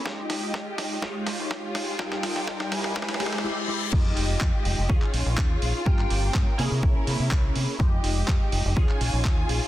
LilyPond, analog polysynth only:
\new Staff \with { instrumentName = "Analog polysynth" } { \time 4/4 \key f \minor \tempo 4 = 124 <aes ees' f' g'>2 <aes ees' f' g'>2 | <g ees' f' g'>4 <g ees' f' g'>4 <e' g'>8 <aes e' g'>8 <aes e' g'>8 <aes e' g'>8 | <aes ees' f' g'>2 <des' ees' f' aes'>2 | <bes des' f' g'>4. <bes des' e' aes'>2~ <bes des' e' aes'>8 |
<aes ees' f' g'>2 <des' ees' f' aes'>2 | }